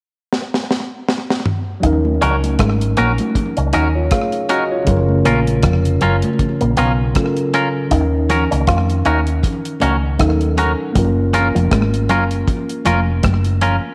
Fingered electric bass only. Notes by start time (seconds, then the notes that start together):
1.84 D#2
2.23 C#2
2.60 G#1
2.99 A#1
3.58 C#2
3.75 D#2
4.88 F#1
5.26 A#1
5.64 F1
6.03 F#1
6.62 A#1
6.79 B1
7.92 D#2
8.52 C#2
8.68 F2
9.07 D#2
9.82 C#2
10.21 D#2
10.96 F#1
11.56 F1
11.72 G#1
12.10 F#1
12.86 F1
13.24 F#1